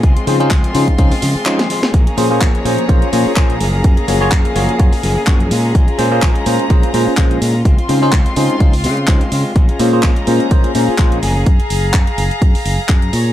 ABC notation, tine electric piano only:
X:1
M:4/4
L:1/16
Q:"Swing 16ths" 1/4=126
K:Bbm
V:1 name="Tine electric piano"
z2 [DEFAc] [DEFAc] z2 [DEFAc]2 [DEFAc] z3 [DEFAc] z3 | z2 [B,DFAc] [B,DFAc]2 z [B,DFAc]2 [B,DFAc]2 [B,DFAc]2 [B,DFAc]2 z2 | z2 [B,FGAd] [B,FGAd] z2 [B,FGAd]2 [B,FGAd] z3 [B,FGAd] z3 | z2 [B,DFAc] [B,DFAc]2 z [B,DFAc]2 [B,DFAc]2 [B,DFAc]2 [B,DFAc]2 z2 |
z2 [DEFAc] [DEFAc] z2 [DEFAc]2 [DEFAc] z3 [DEFAc] z3 | z2 [B,DFAc] [B,DFAc]2 z [B,DFAc]2 [B,DFAc]2 [B,DFAc]2 [B,DFAc]2 z2 | z16 |]